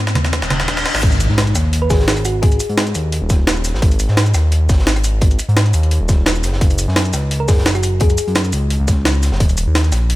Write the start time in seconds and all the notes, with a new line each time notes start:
Already playing: G#2, riser
0.07 snare
0.15 D#2, snare, closed hi-hat, high conga
0.25 snare
0.33 kick, snare, closed hi-hat, reverse cymbal
0.42 D#1, snare
0.50 snare, closed hi-hat, high conga
0.60 snare
0.68 kick, snare, closed hi-hat
0.77 snare
0.86 snare, closed hi-hat
0.95 G#1, snare
1.03 G#1, kick, closed hi-hat, crash, impact
1.12 closed hi-hat, shaker
1.20 closed hi-hat, shaker
1.29 G#2, snare
1.38 snare, closed hi-hat
1.47 closed hi-hat, shaker
1.55 D#2, cross-stick, snare, closed hi-hat, shaker
1.73 closed hi-hat
1.82 B4
1.90 G#1 G#4, kick, snare, closed hi-hat, open hi-hat, shaker
2.00 snare
2.08 snare, closed hi-hat
2.17 cross-stick, closed hi-hat, shaker
2.25 F#4, closed hi-hat, open hi-hat, shaker
2.42 G#4, kick, closed hi-hat
2.52 closed hi-hat, shaker
2.60 closed hi-hat, shaker
2.69 G#2, closed hi-hat
2.78 snare, closed hi-hat
2.87 closed hi-hat, shaker
2.95 D#2, closed hi-hat, shaker
3.12 closed hi-hat
3.22 D#1
3.30 kick, snare, closed hi-hat, shaker
3.47 snare, closed hi-hat
3.57 shaker
3.64 snare, closed hi-hat, open hi-hat, shaker
3.74 G#1, snare
3.82 G#1, kick, closed hi-hat
3.92 closed hi-hat, shaker
3.99 closed hi-hat, shaker
4.08 G#2, snare
4.17 snare, closed hi-hat
4.26 closed hi-hat, shaker
4.34 D#2, cross-stick, snare, closed hi-hat, shaker
4.52 closed hi-hat
4.69 G#1, kick, snare, closed hi-hat, open hi-hat, shaker
4.79 snare
4.87 snare, closed hi-hat
4.96 cross-stick, closed hi-hat, shaker
5.04 closed hi-hat, open hi-hat, shaker
5.21 kick, closed hi-hat
5.31 closed hi-hat, shaker
5.39 closed hi-hat, shaker
5.49 G#2, closed hi-hat
5.57 snare, closed hi-hat
5.66 closed hi-hat, shaker
5.74 D#2, closed hi-hat, shaker
5.83 closed hi-hat
5.91 closed hi-hat
6.01 D#1
6.09 kick, snare, closed hi-hat, shaker
6.26 snare, closed hi-hat
6.36 shaker
6.44 F#1, snare, closed hi-hat, open hi-hat, shaker
6.53 snare
6.61 F#1, kick, closed hi-hat
6.70 closed hi-hat, shaker
6.79 closed hi-hat, shaker
6.88 F#2, snare
6.96 snare, closed hi-hat
7.05 closed hi-hat, shaker
7.13 C#2, cross-stick, snare, closed hi-hat, shaker
7.31 closed hi-hat
7.40 A#4
7.48 F#1 G#4, kick, snare, closed hi-hat, open hi-hat, shaker
7.58 snare
7.66 snare, closed hi-hat
7.75 F#4, cross-stick, closed hi-hat, shaker
7.83 closed hi-hat, open hi-hat, shaker
8.00 G#4, kick, closed hi-hat
8.10 closed hi-hat, shaker
8.18 closed hi-hat, shaker
8.27 F#2, closed hi-hat
8.35 snare, closed hi-hat
8.45 closed hi-hat, shaker
8.53 C#2, closed hi-hat, shaker
8.70 closed hi-hat
8.80 C#2
8.88 kick, snare, closed hi-hat, shaker
9.05 snare, closed hi-hat
9.14 shaker
9.23 snare, closed hi-hat, open hi-hat, shaker
9.32 F#1, snare
9.40 D#1, kick, closed hi-hat
9.49 closed hi-hat, shaker
9.58 closed hi-hat, shaker
9.67 D#2
9.75 snare, closed hi-hat
9.84 closed hi-hat, shaker
9.92 A#1, cross-stick, snare, closed hi-hat, shaker
10.10 closed hi-hat